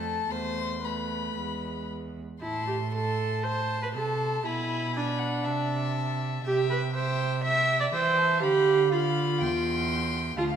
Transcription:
Already playing: F2 A3 A4 A5
0.30 E2 A3 C5 C6
0.84 A3 B4 B5
1.36 E2 G#3
2.41 A2 E4 A5 C6
2.67 G4
2.93 A4 A5 C6
3.43 C5 A5 C6
3.82 B4
3.94 C3 A4 A5 C6
4.45 B2 E4 G#5 B5
4.94 D4 G#5 B5
5.19 F#5
5.44 C3 E5 A5
6.44 C3 G4 E5 G5
6.70 B4
6.94 C5 E5 G5
7.43 E5 G5
7.80 D5
7.92 E3 C5 E5 G5
8.18 A5
8.41 D3 G4 F5 B5
8.92 F4 F5 B5
9.41 E2 G5 C6
10.38 D2 F4 F5 A5

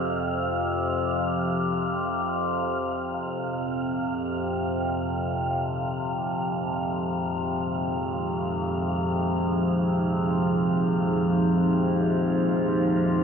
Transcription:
Already playing: F2 C3 F5
3.12 F2 C3 F3 F5
3.31 A#3
5.12 D#4
6.10 C5
6.40 G#4

